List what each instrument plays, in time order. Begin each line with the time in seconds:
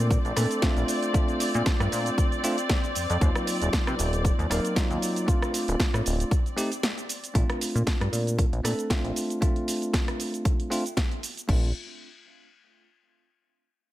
Already playing: analog synth bass A#2, tine electric piano A3 C4 D4 F4, string section C4 D5
0.11 kick, closed hi-hat, shaker
0.25 analog synth bass A#1, closed hi-hat, shaker
0.36 analog synth bass A#2, tine electric piano A3 C4 D4 A4, cross-stick, open hi-hat, shaker
0.51 closed hi-hat, shaker
0.62 tine electric piano A3 C4 D4 F4, kick, snare, closed hi-hat, shaker
0.77 analog synth bass A#1, closed hi-hat, shaker
0.88 open hi-hat, shaker
1.03 closed hi-hat, shaker
1.13 tine electric piano A3 C4 D4 F4, kick, closed hi-hat, shaker
1.28 closed hi-hat, shaker
1.40 open hi-hat, shaker
1.54 analog synth bass A#2, closed hi-hat, shaker
1.66 kick, snare, closed hi-hat, shaker
1.80 analog synth bass G2, cross-stick, closed hi-hat, shaker
1.92 analog synth bass A#2, open hi-hat, shaker
2.06 closed hi-hat, shaker
2.18 kick, closed hi-hat, shaker
2.32 closed hi-hat, shaker
2.43 tine electric piano A3 C4 D4 F4, open hi-hat, shaker
2.58 closed hi-hat, shaker
2.69 kick, snare, closed hi-hat, shaker
2.84 closed hi-hat, shaker
2.95 analog synth bass F2, open hi-hat, shaker
3.10 analog synth bass F2, closed hi-hat, shaker
3.20 analog synth bass D#2, tine electric piano F#3 A#3 D#4 F4, kick, closed hi-hat, shaker
3.35 cross-stick, closed hi-hat, shaker
3.47 open hi-hat, shaker
3.61 analog synth bass D#1, closed hi-hat, shaker
3.73 kick, snare, closed hi-hat, shaker
3.87 analog synth bass C3, cross-stick, closed hi-hat, shaker
3.99 analog synth bass D#1, open hi-hat, shaker
4.13 closed hi-hat, shaker
4.25 kick, closed hi-hat, shaker
4.39 analog synth bass D#2, closed hi-hat, shaker
4.50 analog synth bass D#1, tine electric piano F#3 A#3 D#4 A#4, cross-stick, open hi-hat, shaker
4.65 closed hi-hat, shaker
4.76 tine electric piano F#3 A#3 D#4 F4, kick, snare, closed hi-hat, shaker
4.91 analog synth bass D#2, closed hi-hat, shaker
5.02 open hi-hat, shaker
5.16 closed hi-hat, shaker
5.26 tine electric piano A3 C4 D4 F4, kick, closed hi-hat, shaker
5.42 cross-stick, closed hi-hat, shaker
5.54 open hi-hat, shaker
5.68 analog synth bass D1, closed hi-hat, shaker
5.80 kick, snare, closed hi-hat, shaker
5.94 analog synth bass A2, cross-stick, closed hi-hat, shaker
6.06 analog synth bass D1, open hi-hat, shaker
6.20 closed hi-hat, shaker
6.31 kick, closed hi-hat, shaker
6.46 closed hi-hat, shaker
6.56 tine electric piano A3 C4 D#4 G4, open hi-hat, shaker
6.72 closed hi-hat, shaker
6.83 snare, closed hi-hat, shaker
6.98 closed hi-hat, shaker
7.09 open hi-hat, shaker
7.24 closed hi-hat, shaker
7.34 analog synth bass A#1, tine electric piano A3 C4 D4 F4, kick, closed hi-hat, shaker
7.50 cross-stick, closed hi-hat
7.61 open hi-hat, shaker
7.75 analog synth bass A#2, closed hi-hat, shaker
7.87 kick, snare, closed hi-hat, shaker
8.01 analog synth bass G2, cross-stick, closed hi-hat
8.13 analog synth bass A#2, open hi-hat, shaker
8.27 closed hi-hat, shaker
8.39 kick, closed hi-hat, shaker
8.53 analog synth bass A#1, closed hi-hat
8.64 analog synth bass A#2, tine electric piano A3 C4 D4 A4, cross-stick, open hi-hat, shaker
8.79 closed hi-hat, shaker
8.90 tine electric piano A3 C4 D4 F4, kick, snare, closed hi-hat, shaker
9.04 analog synth bass A#1, closed hi-hat
9.16 open hi-hat, shaker
9.30 closed hi-hat, shaker
9.41 tine electric piano A3 C4 D4 F4, kick, closed hi-hat, shaker
9.56 closed hi-hat
9.68 open hi-hat, shaker
9.82 closed hi-hat, shaker
9.94 kick, snare, closed hi-hat, shaker
10.08 cross-stick, closed hi-hat
10.20 open hi-hat, shaker
10.34 closed hi-hat, shaker
10.45 kick, closed hi-hat, shaker
10.60 closed hi-hat
10.70 tine electric piano A3 C4 D4 F4, open hi-hat, shaker
10.86 closed hi-hat, shaker
10.97 kick, snare, closed hi-hat, shaker
11.12 closed hi-hat
11.23 open hi-hat, shaker
11.37 closed hi-hat, shaker
11.47 analog synth bass A#1, tine electric piano A3 C4 D4 F4, kick, crash